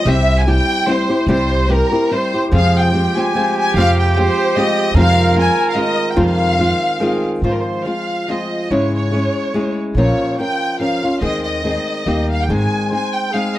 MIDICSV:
0, 0, Header, 1, 5, 480
1, 0, Start_track
1, 0, Key_signature, -4, "minor"
1, 0, Tempo, 410397
1, 60, Time_signature, 3, 2, 24, 8
1, 4380, Tempo, 404040
1, 7740, Tempo, 422535
1, 8700, Key_signature, -4, "major"
1, 15705, End_track
2, 0, Start_track
2, 0, Title_t, "Violin section"
2, 0, Program_c, 0, 48
2, 108, Note_on_c, 0, 76, 98
2, 463, Note_on_c, 0, 80, 66
2, 482, Note_off_c, 0, 76, 0
2, 533, Note_off_c, 0, 80, 0
2, 559, Note_on_c, 0, 79, 102
2, 1019, Note_off_c, 0, 79, 0
2, 1038, Note_on_c, 0, 72, 90
2, 1500, Note_off_c, 0, 72, 0
2, 1522, Note_on_c, 0, 72, 89
2, 1949, Note_off_c, 0, 72, 0
2, 1989, Note_on_c, 0, 70, 87
2, 2460, Note_off_c, 0, 70, 0
2, 2494, Note_on_c, 0, 72, 83
2, 2849, Note_off_c, 0, 72, 0
2, 2973, Note_on_c, 0, 77, 94
2, 3202, Note_off_c, 0, 77, 0
2, 3234, Note_on_c, 0, 79, 82
2, 3698, Note_off_c, 0, 79, 0
2, 3712, Note_on_c, 0, 80, 86
2, 4177, Note_off_c, 0, 80, 0
2, 4191, Note_on_c, 0, 80, 109
2, 4380, Note_off_c, 0, 80, 0
2, 4421, Note_on_c, 0, 77, 106
2, 4664, Note_off_c, 0, 77, 0
2, 4675, Note_on_c, 0, 79, 79
2, 4861, Note_off_c, 0, 79, 0
2, 4885, Note_on_c, 0, 72, 99
2, 5347, Note_off_c, 0, 72, 0
2, 5373, Note_on_c, 0, 75, 92
2, 5828, Note_off_c, 0, 75, 0
2, 5850, Note_on_c, 0, 77, 110
2, 6274, Note_off_c, 0, 77, 0
2, 6332, Note_on_c, 0, 80, 99
2, 6699, Note_on_c, 0, 77, 64
2, 6715, Note_off_c, 0, 80, 0
2, 6770, Note_off_c, 0, 77, 0
2, 6789, Note_on_c, 0, 75, 94
2, 7187, Note_off_c, 0, 75, 0
2, 7190, Note_on_c, 0, 79, 39
2, 7258, Note_off_c, 0, 79, 0
2, 7298, Note_on_c, 0, 77, 92
2, 8505, Note_off_c, 0, 77, 0
2, 8731, Note_on_c, 0, 72, 62
2, 8801, Note_off_c, 0, 72, 0
2, 8807, Note_on_c, 0, 70, 52
2, 8889, Note_off_c, 0, 70, 0
2, 8892, Note_on_c, 0, 72, 48
2, 9182, Note_on_c, 0, 77, 65
2, 9189, Note_off_c, 0, 72, 0
2, 9666, Note_off_c, 0, 77, 0
2, 9692, Note_on_c, 0, 75, 60
2, 10162, Note_off_c, 0, 75, 0
2, 10170, Note_on_c, 0, 73, 63
2, 10423, Note_off_c, 0, 73, 0
2, 10436, Note_on_c, 0, 73, 65
2, 11332, Note_off_c, 0, 73, 0
2, 11601, Note_on_c, 0, 73, 74
2, 12032, Note_off_c, 0, 73, 0
2, 12093, Note_on_c, 0, 79, 83
2, 12546, Note_off_c, 0, 79, 0
2, 12554, Note_on_c, 0, 77, 74
2, 12984, Note_off_c, 0, 77, 0
2, 13025, Note_on_c, 0, 75, 83
2, 13249, Note_off_c, 0, 75, 0
2, 13263, Note_on_c, 0, 75, 73
2, 14190, Note_off_c, 0, 75, 0
2, 14257, Note_on_c, 0, 77, 78
2, 14357, Note_off_c, 0, 77, 0
2, 14374, Note_on_c, 0, 79, 48
2, 14471, Note_off_c, 0, 79, 0
2, 14482, Note_on_c, 0, 80, 78
2, 14948, Note_off_c, 0, 80, 0
2, 14962, Note_on_c, 0, 80, 84
2, 15194, Note_on_c, 0, 79, 77
2, 15197, Note_off_c, 0, 80, 0
2, 15415, Note_off_c, 0, 79, 0
2, 15428, Note_on_c, 0, 77, 81
2, 15685, Note_off_c, 0, 77, 0
2, 15705, End_track
3, 0, Start_track
3, 0, Title_t, "Trumpet"
3, 0, Program_c, 1, 56
3, 2859, Note_on_c, 1, 67, 46
3, 2947, Note_on_c, 1, 68, 64
3, 2964, Note_off_c, 1, 67, 0
3, 3406, Note_off_c, 1, 68, 0
3, 3413, Note_on_c, 1, 67, 102
3, 5808, Note_on_c, 1, 70, 97
3, 5826, Note_off_c, 1, 67, 0
3, 7917, Note_off_c, 1, 70, 0
3, 8215, Note_on_c, 1, 68, 63
3, 8665, Note_off_c, 1, 68, 0
3, 14382, Note_on_c, 1, 67, 37
3, 14439, Note_on_c, 1, 68, 48
3, 14456, Note_off_c, 1, 67, 0
3, 14909, Note_off_c, 1, 68, 0
3, 14916, Note_on_c, 1, 72, 64
3, 15395, Note_on_c, 1, 68, 61
3, 15412, Note_off_c, 1, 72, 0
3, 15705, Note_off_c, 1, 68, 0
3, 15705, End_track
4, 0, Start_track
4, 0, Title_t, "Nylon-string guitar"
4, 0, Program_c, 2, 24
4, 71, Note_on_c, 2, 48, 63
4, 71, Note_on_c, 2, 55, 61
4, 78, Note_on_c, 2, 64, 63
4, 81, Note_on_c, 2, 60, 77
4, 88, Note_on_c, 2, 67, 78
4, 536, Note_off_c, 2, 48, 0
4, 538, Note_off_c, 2, 55, 0
4, 540, Note_off_c, 2, 64, 0
4, 543, Note_on_c, 2, 55, 53
4, 544, Note_off_c, 2, 60, 0
4, 549, Note_on_c, 2, 60, 47
4, 554, Note_off_c, 2, 67, 0
4, 557, Note_on_c, 2, 64, 48
4, 558, Note_on_c, 2, 67, 61
4, 1008, Note_off_c, 2, 55, 0
4, 1013, Note_off_c, 2, 64, 0
4, 1013, Note_on_c, 2, 55, 59
4, 1015, Note_off_c, 2, 60, 0
4, 1020, Note_on_c, 2, 60, 68
4, 1027, Note_on_c, 2, 64, 58
4, 1031, Note_off_c, 2, 67, 0
4, 1035, Note_on_c, 2, 67, 71
4, 1267, Note_off_c, 2, 67, 0
4, 1271, Note_off_c, 2, 55, 0
4, 1273, Note_off_c, 2, 64, 0
4, 1274, Note_off_c, 2, 60, 0
4, 1281, Note_on_c, 2, 67, 40
4, 1287, Note_on_c, 2, 64, 38
4, 1290, Note_on_c, 2, 60, 30
4, 1490, Note_off_c, 2, 60, 0
4, 1491, Note_off_c, 2, 64, 0
4, 1491, Note_off_c, 2, 67, 0
4, 1500, Note_on_c, 2, 48, 60
4, 1503, Note_on_c, 2, 55, 66
4, 1504, Note_on_c, 2, 60, 64
4, 1505, Note_on_c, 2, 64, 68
4, 1517, Note_on_c, 2, 67, 68
4, 1961, Note_off_c, 2, 64, 0
4, 1962, Note_off_c, 2, 55, 0
4, 1967, Note_on_c, 2, 55, 50
4, 1968, Note_off_c, 2, 60, 0
4, 1971, Note_off_c, 2, 48, 0
4, 1973, Note_on_c, 2, 60, 54
4, 1975, Note_on_c, 2, 64, 44
4, 1981, Note_off_c, 2, 67, 0
4, 1986, Note_on_c, 2, 67, 51
4, 2228, Note_off_c, 2, 55, 0
4, 2228, Note_off_c, 2, 67, 0
4, 2231, Note_off_c, 2, 60, 0
4, 2232, Note_off_c, 2, 64, 0
4, 2242, Note_on_c, 2, 67, 47
4, 2254, Note_on_c, 2, 64, 42
4, 2263, Note_on_c, 2, 60, 34
4, 2455, Note_off_c, 2, 67, 0
4, 2458, Note_off_c, 2, 60, 0
4, 2461, Note_off_c, 2, 64, 0
4, 2472, Note_on_c, 2, 60, 53
4, 2473, Note_on_c, 2, 55, 48
4, 2480, Note_on_c, 2, 64, 58
4, 2495, Note_on_c, 2, 67, 52
4, 2723, Note_off_c, 2, 67, 0
4, 2727, Note_off_c, 2, 60, 0
4, 2728, Note_off_c, 2, 55, 0
4, 2731, Note_off_c, 2, 64, 0
4, 2737, Note_on_c, 2, 67, 42
4, 2751, Note_on_c, 2, 64, 36
4, 2759, Note_on_c, 2, 60, 37
4, 2941, Note_on_c, 2, 41, 53
4, 2943, Note_on_c, 2, 48, 62
4, 2946, Note_off_c, 2, 67, 0
4, 2947, Note_off_c, 2, 60, 0
4, 2949, Note_on_c, 2, 53, 72
4, 2953, Note_off_c, 2, 64, 0
4, 2954, Note_on_c, 2, 56, 59
4, 2961, Note_on_c, 2, 60, 70
4, 3421, Note_off_c, 2, 41, 0
4, 3422, Note_off_c, 2, 48, 0
4, 3427, Note_off_c, 2, 53, 0
4, 3432, Note_on_c, 2, 53, 52
4, 3434, Note_off_c, 2, 56, 0
4, 3438, Note_on_c, 2, 56, 52
4, 3440, Note_off_c, 2, 60, 0
4, 3444, Note_on_c, 2, 60, 56
4, 3451, Note_on_c, 2, 67, 46
4, 3688, Note_off_c, 2, 53, 0
4, 3690, Note_off_c, 2, 67, 0
4, 3691, Note_off_c, 2, 56, 0
4, 3694, Note_off_c, 2, 60, 0
4, 3704, Note_on_c, 2, 67, 48
4, 3709, Note_on_c, 2, 60, 41
4, 3714, Note_on_c, 2, 56, 39
4, 3720, Note_on_c, 2, 53, 38
4, 3904, Note_off_c, 2, 53, 0
4, 3911, Note_off_c, 2, 67, 0
4, 3914, Note_off_c, 2, 60, 0
4, 3916, Note_off_c, 2, 56, 0
4, 3918, Note_on_c, 2, 53, 53
4, 3929, Note_on_c, 2, 56, 61
4, 3933, Note_on_c, 2, 60, 60
4, 3934, Note_on_c, 2, 67, 54
4, 4398, Note_off_c, 2, 67, 0
4, 4407, Note_on_c, 2, 41, 69
4, 4412, Note_off_c, 2, 53, 0
4, 4413, Note_off_c, 2, 56, 0
4, 4413, Note_on_c, 2, 48, 73
4, 4417, Note_on_c, 2, 53, 62
4, 4418, Note_on_c, 2, 56, 54
4, 4419, Note_off_c, 2, 60, 0
4, 4423, Note_on_c, 2, 67, 64
4, 4424, Note_on_c, 2, 60, 73
4, 4873, Note_off_c, 2, 41, 0
4, 4876, Note_off_c, 2, 48, 0
4, 4881, Note_off_c, 2, 53, 0
4, 4881, Note_off_c, 2, 67, 0
4, 4886, Note_on_c, 2, 53, 49
4, 4888, Note_off_c, 2, 56, 0
4, 4888, Note_off_c, 2, 60, 0
4, 4892, Note_on_c, 2, 60, 52
4, 4893, Note_on_c, 2, 56, 51
4, 4907, Note_on_c, 2, 67, 57
4, 5344, Note_off_c, 2, 53, 0
4, 5348, Note_on_c, 2, 53, 63
4, 5353, Note_off_c, 2, 56, 0
4, 5355, Note_off_c, 2, 60, 0
4, 5358, Note_off_c, 2, 67, 0
4, 5358, Note_on_c, 2, 56, 61
4, 5359, Note_on_c, 2, 60, 64
4, 5375, Note_on_c, 2, 67, 58
4, 5821, Note_on_c, 2, 41, 54
4, 5827, Note_off_c, 2, 53, 0
4, 5827, Note_on_c, 2, 48, 70
4, 5828, Note_off_c, 2, 56, 0
4, 5829, Note_off_c, 2, 67, 0
4, 5831, Note_off_c, 2, 60, 0
4, 5831, Note_on_c, 2, 51, 79
4, 5833, Note_on_c, 2, 56, 72
4, 5836, Note_on_c, 2, 60, 58
4, 5837, Note_on_c, 2, 65, 60
4, 6281, Note_off_c, 2, 51, 0
4, 6285, Note_on_c, 2, 51, 41
4, 6289, Note_off_c, 2, 56, 0
4, 6291, Note_off_c, 2, 41, 0
4, 6294, Note_off_c, 2, 48, 0
4, 6294, Note_on_c, 2, 56, 46
4, 6296, Note_off_c, 2, 60, 0
4, 6298, Note_off_c, 2, 65, 0
4, 6301, Note_on_c, 2, 60, 57
4, 6303, Note_on_c, 2, 65, 61
4, 6751, Note_off_c, 2, 51, 0
4, 6756, Note_on_c, 2, 51, 57
4, 6760, Note_off_c, 2, 56, 0
4, 6765, Note_on_c, 2, 56, 53
4, 6766, Note_off_c, 2, 60, 0
4, 6771, Note_on_c, 2, 60, 53
4, 6773, Note_off_c, 2, 65, 0
4, 6778, Note_on_c, 2, 65, 60
4, 7250, Note_off_c, 2, 51, 0
4, 7250, Note_on_c, 2, 48, 59
4, 7254, Note_off_c, 2, 60, 0
4, 7254, Note_off_c, 2, 65, 0
4, 7255, Note_on_c, 2, 51, 65
4, 7256, Note_off_c, 2, 56, 0
4, 7256, Note_on_c, 2, 41, 67
4, 7258, Note_on_c, 2, 60, 65
4, 7259, Note_on_c, 2, 65, 79
4, 7260, Note_on_c, 2, 56, 68
4, 7739, Note_off_c, 2, 48, 0
4, 7742, Note_off_c, 2, 41, 0
4, 7745, Note_off_c, 2, 51, 0
4, 7749, Note_off_c, 2, 56, 0
4, 7750, Note_on_c, 2, 51, 39
4, 7754, Note_on_c, 2, 56, 49
4, 7758, Note_off_c, 2, 60, 0
4, 7762, Note_on_c, 2, 60, 43
4, 7768, Note_off_c, 2, 65, 0
4, 7773, Note_on_c, 2, 65, 49
4, 8208, Note_off_c, 2, 51, 0
4, 8221, Note_off_c, 2, 60, 0
4, 8222, Note_on_c, 2, 51, 55
4, 8224, Note_off_c, 2, 56, 0
4, 8228, Note_on_c, 2, 56, 61
4, 8234, Note_off_c, 2, 65, 0
4, 8235, Note_on_c, 2, 60, 67
4, 8247, Note_on_c, 2, 65, 65
4, 8703, Note_off_c, 2, 51, 0
4, 8709, Note_off_c, 2, 60, 0
4, 8715, Note_off_c, 2, 65, 0
4, 8718, Note_on_c, 2, 44, 51
4, 8720, Note_on_c, 2, 51, 44
4, 8721, Note_on_c, 2, 53, 55
4, 8723, Note_off_c, 2, 56, 0
4, 8727, Note_on_c, 2, 56, 42
4, 8729, Note_on_c, 2, 60, 49
4, 8731, Note_on_c, 2, 65, 47
4, 9183, Note_off_c, 2, 53, 0
4, 9191, Note_off_c, 2, 60, 0
4, 9192, Note_off_c, 2, 44, 0
4, 9192, Note_off_c, 2, 56, 0
4, 9193, Note_off_c, 2, 51, 0
4, 9197, Note_on_c, 2, 53, 35
4, 9197, Note_on_c, 2, 56, 39
4, 9199, Note_off_c, 2, 65, 0
4, 9204, Note_on_c, 2, 60, 35
4, 9211, Note_on_c, 2, 65, 37
4, 9666, Note_off_c, 2, 53, 0
4, 9674, Note_off_c, 2, 56, 0
4, 9678, Note_off_c, 2, 60, 0
4, 9680, Note_on_c, 2, 53, 43
4, 9681, Note_off_c, 2, 65, 0
4, 9686, Note_on_c, 2, 56, 43
4, 9696, Note_on_c, 2, 60, 39
4, 9701, Note_on_c, 2, 65, 45
4, 10155, Note_off_c, 2, 56, 0
4, 10156, Note_off_c, 2, 53, 0
4, 10164, Note_off_c, 2, 60, 0
4, 10164, Note_on_c, 2, 44, 42
4, 10166, Note_off_c, 2, 65, 0
4, 10169, Note_on_c, 2, 56, 51
4, 10170, Note_on_c, 2, 68, 56
4, 10173, Note_on_c, 2, 49, 51
4, 10173, Note_on_c, 2, 64, 57
4, 10175, Note_on_c, 2, 61, 59
4, 10613, Note_off_c, 2, 56, 0
4, 10626, Note_on_c, 2, 56, 39
4, 10628, Note_off_c, 2, 64, 0
4, 10634, Note_off_c, 2, 44, 0
4, 10637, Note_off_c, 2, 61, 0
4, 10638, Note_off_c, 2, 68, 0
4, 10639, Note_off_c, 2, 49, 0
4, 10642, Note_on_c, 2, 61, 43
4, 10642, Note_on_c, 2, 64, 47
4, 10653, Note_on_c, 2, 68, 42
4, 11098, Note_off_c, 2, 56, 0
4, 11101, Note_off_c, 2, 61, 0
4, 11111, Note_off_c, 2, 64, 0
4, 11112, Note_off_c, 2, 68, 0
4, 11112, Note_on_c, 2, 56, 57
4, 11115, Note_on_c, 2, 61, 49
4, 11126, Note_on_c, 2, 68, 55
4, 11131, Note_on_c, 2, 64, 46
4, 11586, Note_off_c, 2, 56, 0
4, 11588, Note_off_c, 2, 61, 0
4, 11593, Note_off_c, 2, 68, 0
4, 11595, Note_on_c, 2, 46, 50
4, 11596, Note_off_c, 2, 64, 0
4, 11607, Note_on_c, 2, 53, 52
4, 11609, Note_on_c, 2, 61, 59
4, 11610, Note_on_c, 2, 70, 59
4, 11611, Note_on_c, 2, 65, 61
4, 12059, Note_off_c, 2, 53, 0
4, 12061, Note_off_c, 2, 46, 0
4, 12064, Note_off_c, 2, 61, 0
4, 12069, Note_off_c, 2, 65, 0
4, 12069, Note_off_c, 2, 70, 0
4, 12073, Note_on_c, 2, 53, 37
4, 12078, Note_on_c, 2, 61, 44
4, 12083, Note_on_c, 2, 65, 49
4, 12087, Note_on_c, 2, 70, 42
4, 12522, Note_off_c, 2, 53, 0
4, 12526, Note_off_c, 2, 61, 0
4, 12534, Note_off_c, 2, 70, 0
4, 12535, Note_off_c, 2, 65, 0
4, 12536, Note_on_c, 2, 53, 41
4, 12539, Note_on_c, 2, 61, 45
4, 12547, Note_on_c, 2, 70, 54
4, 12549, Note_on_c, 2, 65, 44
4, 12783, Note_off_c, 2, 70, 0
4, 12792, Note_off_c, 2, 53, 0
4, 12793, Note_off_c, 2, 61, 0
4, 12796, Note_on_c, 2, 70, 31
4, 12798, Note_off_c, 2, 65, 0
4, 12812, Note_on_c, 2, 65, 33
4, 12814, Note_on_c, 2, 61, 35
4, 13007, Note_off_c, 2, 61, 0
4, 13008, Note_off_c, 2, 70, 0
4, 13012, Note_on_c, 2, 56, 55
4, 13015, Note_on_c, 2, 51, 62
4, 13016, Note_off_c, 2, 65, 0
4, 13021, Note_on_c, 2, 68, 65
4, 13022, Note_on_c, 2, 60, 55
4, 13485, Note_off_c, 2, 56, 0
4, 13488, Note_off_c, 2, 51, 0
4, 13490, Note_off_c, 2, 60, 0
4, 13490, Note_off_c, 2, 68, 0
4, 13492, Note_on_c, 2, 51, 48
4, 13501, Note_on_c, 2, 56, 39
4, 13508, Note_on_c, 2, 60, 43
4, 13514, Note_on_c, 2, 68, 40
4, 13971, Note_off_c, 2, 51, 0
4, 13972, Note_off_c, 2, 56, 0
4, 13976, Note_on_c, 2, 55, 51
4, 13977, Note_on_c, 2, 58, 55
4, 13980, Note_off_c, 2, 60, 0
4, 13983, Note_off_c, 2, 68, 0
4, 13989, Note_on_c, 2, 63, 56
4, 13993, Note_on_c, 2, 67, 55
4, 14462, Note_off_c, 2, 55, 0
4, 14462, Note_off_c, 2, 58, 0
4, 14462, Note_off_c, 2, 63, 0
4, 14466, Note_on_c, 2, 44, 50
4, 14469, Note_off_c, 2, 67, 0
4, 14470, Note_on_c, 2, 56, 54
4, 14471, Note_on_c, 2, 51, 49
4, 14473, Note_on_c, 2, 68, 53
4, 14474, Note_on_c, 2, 60, 53
4, 14476, Note_on_c, 2, 63, 54
4, 14933, Note_off_c, 2, 56, 0
4, 14940, Note_off_c, 2, 60, 0
4, 14946, Note_off_c, 2, 44, 0
4, 14947, Note_on_c, 2, 56, 33
4, 14948, Note_off_c, 2, 51, 0
4, 14948, Note_off_c, 2, 63, 0
4, 14950, Note_off_c, 2, 68, 0
4, 14954, Note_on_c, 2, 60, 44
4, 14961, Note_on_c, 2, 63, 42
4, 14961, Note_on_c, 2, 68, 46
4, 15413, Note_off_c, 2, 56, 0
4, 15418, Note_off_c, 2, 60, 0
4, 15424, Note_off_c, 2, 63, 0
4, 15427, Note_on_c, 2, 56, 52
4, 15430, Note_off_c, 2, 68, 0
4, 15432, Note_on_c, 2, 60, 48
4, 15438, Note_on_c, 2, 63, 48
4, 15445, Note_on_c, 2, 68, 43
4, 15705, Note_off_c, 2, 56, 0
4, 15705, Note_off_c, 2, 60, 0
4, 15705, Note_off_c, 2, 63, 0
4, 15705, Note_off_c, 2, 68, 0
4, 15705, End_track
5, 0, Start_track
5, 0, Title_t, "Upright bass"
5, 0, Program_c, 3, 32
5, 62, Note_on_c, 3, 36, 82
5, 676, Note_off_c, 3, 36, 0
5, 1480, Note_on_c, 3, 36, 78
5, 2107, Note_off_c, 3, 36, 0
5, 2948, Note_on_c, 3, 41, 74
5, 3571, Note_off_c, 3, 41, 0
5, 4375, Note_on_c, 3, 41, 73
5, 4997, Note_off_c, 3, 41, 0
5, 5803, Note_on_c, 3, 41, 90
5, 6427, Note_off_c, 3, 41, 0
5, 7264, Note_on_c, 3, 41, 78
5, 7895, Note_off_c, 3, 41, 0
5, 8699, Note_on_c, 3, 44, 62
5, 8871, Note_off_c, 3, 44, 0
5, 10163, Note_on_c, 3, 44, 54
5, 10778, Note_off_c, 3, 44, 0
5, 11570, Note_on_c, 3, 34, 69
5, 11743, Note_off_c, 3, 34, 0
5, 13010, Note_on_c, 3, 39, 57
5, 13634, Note_off_c, 3, 39, 0
5, 13974, Note_on_c, 3, 39, 68
5, 14458, Note_on_c, 3, 32, 60
5, 14475, Note_off_c, 3, 39, 0
5, 14630, Note_off_c, 3, 32, 0
5, 15705, End_track
0, 0, End_of_file